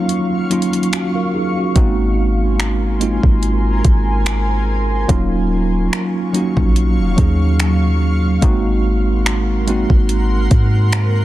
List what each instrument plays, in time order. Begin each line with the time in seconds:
Already playing: tine electric piano F#3 A#3 C#4 D#4 F4, ambient pad F#3 F5 C#6
0.09 closed hi-hat
0.50 tine electric piano F#3 A#3 C#4 D#4 F4, closed hi-hat
0.62 closed hi-hat
0.73 closed hi-hat
0.83 closed hi-hat
0.93 tine electric piano F#4, finger snap, closed hi-hat
1.15 tine electric piano F4 A#4
1.34 tine electric piano D#4 G#4
1.57 tine electric piano C#4 F#4
1.75 808-style bass G#1, tine electric piano G#3 A#3 C4 D#4 F#4, ambient pad A#4 G#5 C6, kick, closed hi-hat
2.60 finger snap, closed hi-hat
3.00 tine electric piano G#3 A#3 C4 D#4 F4, closed hi-hat
3.23 808-style bass G#1, kick
3.43 closed hi-hat
3.85 808-style bass G#1, kick, closed hi-hat
4.26 finger snap, closed hi-hat
5.08 808-style bass D#1, tine electric piano F#3 A#3 C#4 D#4 F4, ambient pad F#3 F5 C#6, kick, closed hi-hat
5.93 finger snap, closed hi-hat
6.33 tine electric piano F#3 A#3 C#4 D#4 F#4, closed hi-hat
6.57 808-style bass A#1, kick
6.76 closed hi-hat
6.99 808-style bass F1
7.16 808-style bass D#2, tine electric piano F#3 A#3 C#4 D#4 G#4, kick, closed hi-hat
7.60 finger snap, closed hi-hat
8.41 808-style bass G#1, tine electric piano G#3 A#3 C4 D#4 F#4, ambient pad A#4 F#5 C6, kick, closed hi-hat
9.26 finger snap, closed hi-hat
9.67 tine electric piano G#3 A#3 C4 D#4 F#4, closed hi-hat
9.90 808-style bass G#1, kick
10.09 closed hi-hat
10.51 808-style bass G#2, kick, closed hi-hat
10.92 finger snap, closed hi-hat